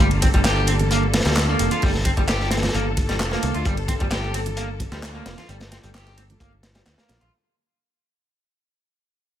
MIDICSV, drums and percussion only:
0, 0, Header, 1, 2, 480
1, 0, Start_track
1, 0, Key_signature, -2, "minor"
1, 0, Tempo, 458015
1, 1914, Time_signature, 4, 2, 24, 8
1, 9851, End_track
2, 0, Start_track
2, 0, Title_t, "Drums"
2, 116, Note_on_c, 9, 51, 48
2, 220, Note_off_c, 9, 51, 0
2, 232, Note_on_c, 9, 42, 71
2, 232, Note_on_c, 9, 51, 84
2, 238, Note_on_c, 9, 62, 51
2, 243, Note_on_c, 9, 36, 92
2, 337, Note_off_c, 9, 42, 0
2, 337, Note_off_c, 9, 51, 0
2, 342, Note_off_c, 9, 62, 0
2, 348, Note_off_c, 9, 36, 0
2, 355, Note_on_c, 9, 42, 40
2, 357, Note_on_c, 9, 36, 87
2, 363, Note_on_c, 9, 63, 68
2, 459, Note_off_c, 9, 42, 0
2, 462, Note_off_c, 9, 36, 0
2, 468, Note_off_c, 9, 63, 0
2, 469, Note_on_c, 9, 39, 102
2, 469, Note_on_c, 9, 42, 29
2, 473, Note_on_c, 9, 38, 111
2, 480, Note_off_c, 9, 42, 0
2, 480, Note_on_c, 9, 42, 92
2, 486, Note_on_c, 9, 62, 68
2, 574, Note_off_c, 9, 39, 0
2, 578, Note_off_c, 9, 38, 0
2, 585, Note_off_c, 9, 42, 0
2, 591, Note_off_c, 9, 62, 0
2, 703, Note_on_c, 9, 42, 69
2, 709, Note_off_c, 9, 42, 0
2, 709, Note_on_c, 9, 42, 72
2, 709, Note_on_c, 9, 51, 85
2, 814, Note_off_c, 9, 42, 0
2, 814, Note_off_c, 9, 51, 0
2, 833, Note_on_c, 9, 42, 43
2, 835, Note_on_c, 9, 62, 53
2, 837, Note_on_c, 9, 64, 89
2, 842, Note_on_c, 9, 63, 92
2, 938, Note_off_c, 9, 42, 0
2, 939, Note_off_c, 9, 62, 0
2, 942, Note_off_c, 9, 64, 0
2, 946, Note_off_c, 9, 63, 0
2, 951, Note_on_c, 9, 42, 31
2, 961, Note_off_c, 9, 42, 0
2, 961, Note_on_c, 9, 42, 83
2, 1066, Note_off_c, 9, 42, 0
2, 1080, Note_on_c, 9, 62, 80
2, 1185, Note_off_c, 9, 62, 0
2, 1190, Note_on_c, 9, 42, 72
2, 1190, Note_on_c, 9, 51, 81
2, 1195, Note_on_c, 9, 38, 99
2, 1195, Note_on_c, 9, 64, 88
2, 1198, Note_on_c, 9, 63, 62
2, 1259, Note_off_c, 9, 38, 0
2, 1259, Note_on_c, 9, 38, 86
2, 1261, Note_off_c, 9, 42, 0
2, 1261, Note_on_c, 9, 42, 65
2, 1295, Note_off_c, 9, 51, 0
2, 1300, Note_off_c, 9, 64, 0
2, 1302, Note_off_c, 9, 63, 0
2, 1312, Note_off_c, 9, 42, 0
2, 1312, Note_on_c, 9, 42, 40
2, 1317, Note_off_c, 9, 42, 0
2, 1317, Note_on_c, 9, 42, 72
2, 1322, Note_off_c, 9, 38, 0
2, 1322, Note_on_c, 9, 38, 92
2, 1378, Note_off_c, 9, 38, 0
2, 1378, Note_on_c, 9, 38, 94
2, 1380, Note_off_c, 9, 42, 0
2, 1380, Note_on_c, 9, 42, 70
2, 1429, Note_off_c, 9, 42, 0
2, 1429, Note_on_c, 9, 42, 86
2, 1430, Note_off_c, 9, 42, 0
2, 1430, Note_on_c, 9, 39, 108
2, 1430, Note_on_c, 9, 42, 31
2, 1435, Note_on_c, 9, 62, 50
2, 1437, Note_off_c, 9, 38, 0
2, 1437, Note_on_c, 9, 38, 115
2, 1535, Note_off_c, 9, 39, 0
2, 1535, Note_off_c, 9, 42, 0
2, 1539, Note_off_c, 9, 62, 0
2, 1542, Note_off_c, 9, 38, 0
2, 1556, Note_on_c, 9, 63, 86
2, 1660, Note_off_c, 9, 63, 0
2, 1670, Note_on_c, 9, 42, 71
2, 1670, Note_on_c, 9, 51, 81
2, 1673, Note_off_c, 9, 42, 0
2, 1673, Note_on_c, 9, 42, 62
2, 1673, Note_on_c, 9, 62, 78
2, 1775, Note_off_c, 9, 51, 0
2, 1778, Note_off_c, 9, 42, 0
2, 1778, Note_off_c, 9, 62, 0
2, 1793, Note_on_c, 9, 64, 80
2, 1794, Note_on_c, 9, 42, 42
2, 1796, Note_off_c, 9, 42, 0
2, 1796, Note_on_c, 9, 42, 40
2, 1898, Note_off_c, 9, 64, 0
2, 1901, Note_off_c, 9, 42, 0
2, 1909, Note_on_c, 9, 42, 30
2, 1915, Note_on_c, 9, 46, 78
2, 1915, Note_on_c, 9, 63, 82
2, 1918, Note_on_c, 9, 36, 106
2, 2014, Note_off_c, 9, 42, 0
2, 2020, Note_off_c, 9, 46, 0
2, 2020, Note_off_c, 9, 63, 0
2, 2023, Note_off_c, 9, 36, 0
2, 2034, Note_on_c, 9, 62, 56
2, 2036, Note_on_c, 9, 38, 40
2, 2139, Note_off_c, 9, 62, 0
2, 2140, Note_off_c, 9, 38, 0
2, 2150, Note_on_c, 9, 36, 101
2, 2150, Note_on_c, 9, 42, 69
2, 2150, Note_on_c, 9, 51, 83
2, 2154, Note_off_c, 9, 42, 0
2, 2154, Note_on_c, 9, 42, 73
2, 2254, Note_off_c, 9, 36, 0
2, 2254, Note_off_c, 9, 51, 0
2, 2258, Note_off_c, 9, 42, 0
2, 2276, Note_on_c, 9, 42, 41
2, 2276, Note_on_c, 9, 63, 61
2, 2278, Note_on_c, 9, 36, 99
2, 2278, Note_on_c, 9, 62, 82
2, 2381, Note_off_c, 9, 42, 0
2, 2381, Note_off_c, 9, 63, 0
2, 2383, Note_off_c, 9, 36, 0
2, 2383, Note_off_c, 9, 62, 0
2, 2392, Note_on_c, 9, 42, 90
2, 2394, Note_off_c, 9, 42, 0
2, 2394, Note_on_c, 9, 39, 98
2, 2394, Note_on_c, 9, 42, 30
2, 2402, Note_on_c, 9, 38, 109
2, 2499, Note_off_c, 9, 39, 0
2, 2499, Note_off_c, 9, 42, 0
2, 2506, Note_off_c, 9, 38, 0
2, 2516, Note_on_c, 9, 38, 41
2, 2621, Note_off_c, 9, 38, 0
2, 2626, Note_on_c, 9, 38, 91
2, 2631, Note_on_c, 9, 42, 65
2, 2635, Note_off_c, 9, 42, 0
2, 2635, Note_on_c, 9, 42, 71
2, 2635, Note_on_c, 9, 51, 86
2, 2639, Note_on_c, 9, 62, 53
2, 2695, Note_off_c, 9, 42, 0
2, 2695, Note_on_c, 9, 42, 63
2, 2699, Note_off_c, 9, 38, 0
2, 2699, Note_on_c, 9, 38, 90
2, 2740, Note_off_c, 9, 51, 0
2, 2743, Note_off_c, 9, 62, 0
2, 2755, Note_on_c, 9, 64, 89
2, 2756, Note_off_c, 9, 38, 0
2, 2756, Note_on_c, 9, 38, 97
2, 2757, Note_off_c, 9, 42, 0
2, 2757, Note_on_c, 9, 42, 42
2, 2757, Note_on_c, 9, 63, 83
2, 2759, Note_off_c, 9, 42, 0
2, 2759, Note_on_c, 9, 42, 68
2, 2816, Note_off_c, 9, 38, 0
2, 2816, Note_off_c, 9, 42, 0
2, 2816, Note_on_c, 9, 38, 84
2, 2816, Note_on_c, 9, 42, 69
2, 2860, Note_off_c, 9, 64, 0
2, 2861, Note_off_c, 9, 63, 0
2, 2872, Note_on_c, 9, 62, 73
2, 2877, Note_off_c, 9, 42, 0
2, 2877, Note_on_c, 9, 42, 30
2, 2883, Note_off_c, 9, 42, 0
2, 2883, Note_on_c, 9, 42, 84
2, 2921, Note_off_c, 9, 38, 0
2, 2977, Note_off_c, 9, 62, 0
2, 2988, Note_off_c, 9, 42, 0
2, 3114, Note_on_c, 9, 42, 72
2, 3114, Note_on_c, 9, 51, 84
2, 3117, Note_on_c, 9, 63, 68
2, 3118, Note_on_c, 9, 36, 94
2, 3122, Note_off_c, 9, 42, 0
2, 3122, Note_on_c, 9, 42, 74
2, 3218, Note_off_c, 9, 51, 0
2, 3222, Note_off_c, 9, 63, 0
2, 3223, Note_off_c, 9, 36, 0
2, 3227, Note_off_c, 9, 42, 0
2, 3237, Note_on_c, 9, 62, 52
2, 3239, Note_on_c, 9, 42, 42
2, 3242, Note_on_c, 9, 38, 46
2, 3342, Note_off_c, 9, 62, 0
2, 3343, Note_off_c, 9, 42, 0
2, 3347, Note_off_c, 9, 38, 0
2, 3354, Note_on_c, 9, 38, 123
2, 3354, Note_on_c, 9, 39, 103
2, 3354, Note_on_c, 9, 42, 32
2, 3356, Note_off_c, 9, 42, 0
2, 3356, Note_on_c, 9, 42, 90
2, 3459, Note_off_c, 9, 38, 0
2, 3459, Note_off_c, 9, 39, 0
2, 3461, Note_off_c, 9, 42, 0
2, 3471, Note_on_c, 9, 62, 85
2, 3476, Note_on_c, 9, 38, 65
2, 3476, Note_on_c, 9, 63, 82
2, 3576, Note_off_c, 9, 62, 0
2, 3581, Note_off_c, 9, 38, 0
2, 3581, Note_off_c, 9, 63, 0
2, 3592, Note_on_c, 9, 42, 67
2, 3592, Note_on_c, 9, 51, 87
2, 3594, Note_off_c, 9, 42, 0
2, 3594, Note_on_c, 9, 42, 69
2, 3697, Note_off_c, 9, 51, 0
2, 3699, Note_off_c, 9, 42, 0
2, 3715, Note_on_c, 9, 42, 43
2, 3820, Note_off_c, 9, 42, 0
2, 3828, Note_on_c, 9, 42, 88
2, 3831, Note_off_c, 9, 42, 0
2, 3831, Note_on_c, 9, 36, 111
2, 3831, Note_on_c, 9, 42, 31
2, 3837, Note_on_c, 9, 63, 90
2, 3845, Note_on_c, 9, 62, 51
2, 3936, Note_off_c, 9, 36, 0
2, 3936, Note_off_c, 9, 42, 0
2, 3942, Note_off_c, 9, 63, 0
2, 3950, Note_off_c, 9, 62, 0
2, 3955, Note_on_c, 9, 51, 51
2, 4060, Note_off_c, 9, 51, 0
2, 4066, Note_on_c, 9, 62, 82
2, 4069, Note_on_c, 9, 36, 94
2, 4069, Note_on_c, 9, 42, 71
2, 4073, Note_off_c, 9, 42, 0
2, 4073, Note_on_c, 9, 42, 73
2, 4073, Note_on_c, 9, 51, 90
2, 4171, Note_off_c, 9, 62, 0
2, 4174, Note_off_c, 9, 36, 0
2, 4178, Note_off_c, 9, 42, 0
2, 4178, Note_off_c, 9, 51, 0
2, 4195, Note_on_c, 9, 42, 40
2, 4202, Note_on_c, 9, 36, 103
2, 4202, Note_on_c, 9, 63, 67
2, 4300, Note_off_c, 9, 42, 0
2, 4307, Note_off_c, 9, 36, 0
2, 4307, Note_off_c, 9, 63, 0
2, 4312, Note_on_c, 9, 39, 97
2, 4312, Note_on_c, 9, 42, 30
2, 4313, Note_off_c, 9, 42, 0
2, 4313, Note_on_c, 9, 42, 92
2, 4318, Note_on_c, 9, 38, 113
2, 4417, Note_off_c, 9, 39, 0
2, 4418, Note_off_c, 9, 42, 0
2, 4423, Note_off_c, 9, 38, 0
2, 4447, Note_on_c, 9, 62, 58
2, 4549, Note_on_c, 9, 42, 63
2, 4551, Note_off_c, 9, 42, 0
2, 4551, Note_on_c, 9, 42, 73
2, 4551, Note_on_c, 9, 51, 89
2, 4552, Note_off_c, 9, 62, 0
2, 4656, Note_off_c, 9, 42, 0
2, 4656, Note_off_c, 9, 51, 0
2, 4674, Note_on_c, 9, 42, 43
2, 4675, Note_on_c, 9, 63, 94
2, 4679, Note_on_c, 9, 62, 79
2, 4683, Note_on_c, 9, 64, 82
2, 4779, Note_off_c, 9, 42, 0
2, 4780, Note_off_c, 9, 63, 0
2, 4783, Note_off_c, 9, 62, 0
2, 4787, Note_off_c, 9, 64, 0
2, 4787, Note_on_c, 9, 42, 97
2, 4789, Note_off_c, 9, 42, 0
2, 4789, Note_on_c, 9, 42, 31
2, 4894, Note_off_c, 9, 42, 0
2, 5029, Note_on_c, 9, 36, 95
2, 5031, Note_on_c, 9, 42, 71
2, 5032, Note_off_c, 9, 42, 0
2, 5032, Note_on_c, 9, 42, 73
2, 5032, Note_on_c, 9, 51, 87
2, 5034, Note_on_c, 9, 62, 50
2, 5034, Note_on_c, 9, 63, 66
2, 5040, Note_on_c, 9, 64, 93
2, 5134, Note_off_c, 9, 36, 0
2, 5136, Note_off_c, 9, 42, 0
2, 5136, Note_off_c, 9, 51, 0
2, 5138, Note_off_c, 9, 63, 0
2, 5139, Note_off_c, 9, 62, 0
2, 5145, Note_off_c, 9, 64, 0
2, 5154, Note_on_c, 9, 38, 46
2, 5155, Note_on_c, 9, 42, 41
2, 5259, Note_off_c, 9, 38, 0
2, 5259, Note_off_c, 9, 42, 0
2, 5268, Note_on_c, 9, 38, 114
2, 5272, Note_on_c, 9, 39, 106
2, 5272, Note_on_c, 9, 42, 31
2, 5274, Note_on_c, 9, 62, 79
2, 5372, Note_off_c, 9, 38, 0
2, 5377, Note_off_c, 9, 39, 0
2, 5377, Note_off_c, 9, 42, 0
2, 5379, Note_off_c, 9, 62, 0
2, 5387, Note_on_c, 9, 63, 91
2, 5492, Note_off_c, 9, 63, 0
2, 5510, Note_on_c, 9, 38, 119
2, 5511, Note_on_c, 9, 42, 70
2, 5511, Note_on_c, 9, 51, 86
2, 5514, Note_off_c, 9, 42, 0
2, 5514, Note_on_c, 9, 42, 75
2, 5615, Note_off_c, 9, 38, 0
2, 5616, Note_off_c, 9, 51, 0
2, 5619, Note_off_c, 9, 42, 0
2, 5638, Note_on_c, 9, 38, 52
2, 5638, Note_on_c, 9, 42, 42
2, 5640, Note_on_c, 9, 64, 84
2, 5642, Note_on_c, 9, 62, 54
2, 5742, Note_off_c, 9, 38, 0
2, 5743, Note_off_c, 9, 42, 0
2, 5745, Note_off_c, 9, 64, 0
2, 5746, Note_off_c, 9, 62, 0
2, 5754, Note_on_c, 9, 42, 61
2, 5758, Note_on_c, 9, 63, 83
2, 5858, Note_off_c, 9, 42, 0
2, 5863, Note_off_c, 9, 63, 0
2, 5868, Note_on_c, 9, 62, 89
2, 5876, Note_on_c, 9, 42, 70
2, 5882, Note_on_c, 9, 38, 108
2, 5973, Note_off_c, 9, 62, 0
2, 5981, Note_off_c, 9, 42, 0
2, 5987, Note_off_c, 9, 38, 0
2, 5992, Note_on_c, 9, 42, 77
2, 5992, Note_on_c, 9, 51, 88
2, 5997, Note_on_c, 9, 38, 96
2, 6097, Note_off_c, 9, 42, 0
2, 6097, Note_off_c, 9, 51, 0
2, 6102, Note_off_c, 9, 38, 0
2, 6113, Note_on_c, 9, 63, 58
2, 6116, Note_on_c, 9, 42, 44
2, 6120, Note_off_c, 9, 42, 0
2, 6120, Note_on_c, 9, 42, 63
2, 6218, Note_off_c, 9, 63, 0
2, 6225, Note_off_c, 9, 42, 0
2, 6225, Note_on_c, 9, 42, 80
2, 6231, Note_on_c, 9, 38, 113
2, 6233, Note_off_c, 9, 42, 0
2, 6233, Note_on_c, 9, 39, 100
2, 6233, Note_on_c, 9, 42, 31
2, 6245, Note_on_c, 9, 62, 53
2, 6336, Note_off_c, 9, 38, 0
2, 6338, Note_off_c, 9, 39, 0
2, 6338, Note_off_c, 9, 42, 0
2, 6350, Note_off_c, 9, 62, 0
2, 6358, Note_on_c, 9, 51, 54
2, 6359, Note_on_c, 9, 38, 43
2, 6462, Note_off_c, 9, 51, 0
2, 6463, Note_off_c, 9, 38, 0
2, 6472, Note_on_c, 9, 42, 74
2, 6474, Note_off_c, 9, 42, 0
2, 6474, Note_on_c, 9, 42, 76
2, 6474, Note_on_c, 9, 51, 92
2, 6484, Note_on_c, 9, 62, 92
2, 6579, Note_off_c, 9, 42, 0
2, 6579, Note_off_c, 9, 51, 0
2, 6589, Note_off_c, 9, 62, 0
2, 6599, Note_on_c, 9, 63, 87
2, 6601, Note_on_c, 9, 42, 45
2, 6608, Note_on_c, 9, 64, 98
2, 6704, Note_off_c, 9, 63, 0
2, 6706, Note_off_c, 9, 42, 0
2, 6710, Note_on_c, 9, 36, 99
2, 6711, Note_on_c, 9, 42, 84
2, 6712, Note_off_c, 9, 64, 0
2, 6716, Note_off_c, 9, 42, 0
2, 6716, Note_on_c, 9, 42, 33
2, 6815, Note_off_c, 9, 36, 0
2, 6821, Note_off_c, 9, 42, 0
2, 6840, Note_on_c, 9, 62, 55
2, 6945, Note_off_c, 9, 62, 0
2, 6950, Note_on_c, 9, 38, 103
2, 6951, Note_on_c, 9, 63, 68
2, 6953, Note_on_c, 9, 42, 75
2, 6953, Note_on_c, 9, 51, 91
2, 6959, Note_off_c, 9, 42, 0
2, 6959, Note_on_c, 9, 42, 80
2, 7055, Note_off_c, 9, 38, 0
2, 7056, Note_off_c, 9, 63, 0
2, 7058, Note_off_c, 9, 51, 0
2, 7064, Note_off_c, 9, 42, 0
2, 7072, Note_on_c, 9, 42, 77
2, 7077, Note_off_c, 9, 42, 0
2, 7077, Note_on_c, 9, 42, 44
2, 7079, Note_on_c, 9, 62, 87
2, 7081, Note_on_c, 9, 38, 109
2, 7182, Note_off_c, 9, 42, 0
2, 7184, Note_off_c, 9, 62, 0
2, 7186, Note_off_c, 9, 38, 0
2, 7190, Note_on_c, 9, 38, 110
2, 7194, Note_on_c, 9, 39, 102
2, 7194, Note_on_c, 9, 42, 34
2, 7196, Note_off_c, 9, 42, 0
2, 7196, Note_on_c, 9, 42, 76
2, 7295, Note_off_c, 9, 38, 0
2, 7299, Note_off_c, 9, 39, 0
2, 7301, Note_off_c, 9, 42, 0
2, 7315, Note_on_c, 9, 38, 109
2, 7320, Note_on_c, 9, 42, 81
2, 7321, Note_on_c, 9, 63, 95
2, 7420, Note_off_c, 9, 38, 0
2, 7425, Note_off_c, 9, 42, 0
2, 7425, Note_off_c, 9, 63, 0
2, 7427, Note_on_c, 9, 42, 78
2, 7432, Note_on_c, 9, 38, 112
2, 7433, Note_on_c, 9, 62, 62
2, 7435, Note_off_c, 9, 42, 0
2, 7435, Note_on_c, 9, 42, 76
2, 7435, Note_on_c, 9, 51, 90
2, 7537, Note_off_c, 9, 38, 0
2, 7538, Note_off_c, 9, 62, 0
2, 7540, Note_off_c, 9, 42, 0
2, 7540, Note_off_c, 9, 51, 0
2, 7559, Note_on_c, 9, 42, 44
2, 7664, Note_off_c, 9, 42, 0
2, 9851, End_track
0, 0, End_of_file